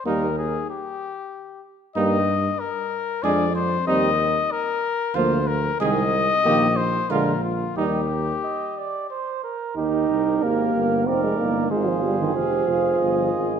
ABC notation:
X:1
M:3/4
L:1/16
Q:1/4=93
K:Eb
V:1 name="Cornet"
B2 A2 G6 z2 | e4 B4 d2 c2 | e4 B4 c2 B2 | e6 c2 B2 F2 |
G8 z4 | B8 d4 | c4 f4 e4 |]
V:2 name="Trumpet"
E2 z8 z2 | E2 z6 A2 z2 | E2 z6 F2 z2 | A2 z2 G2 z2 F2 z2 |
E2 z2 e2 d2 c2 B2 | G4 B4 B4 | A12 |]
V:3 name="French horn"
B,2 z8 z2 | B,2 z6 D2 z2 | C2 z6 B,2 z2 | A,2 z2 B,2 z2 A,2 z2 |
G,2 z8 z2 | z4 G4 E4 | F4 G2 F6 |]
V:4 name="Trombone" clef=bass
G,2 z8 z2 | G,2 z6 A,2 z2 | G,2 z6 F,2 z2 | E,2 z2 E,2 z2 D,2 z2 |
E,2 z8 z2 | E4 B,4 C A, B,2 | A, F, G, E, F,6 z2 |]
V:5 name="Tuba" clef=bass
E,,4 z8 | G,,4 z4 F,,4 | E,,4 z4 D,,4 | C,,4 B,,,4 B,,,4 |
E,,4 z8 | E,,2 C,,2 A,,,2 G,,,2 F,,,2 G,,,2 | A,,,2 G,,,2 F,,,2 F,,,2 G,,,2 A,,,2 |]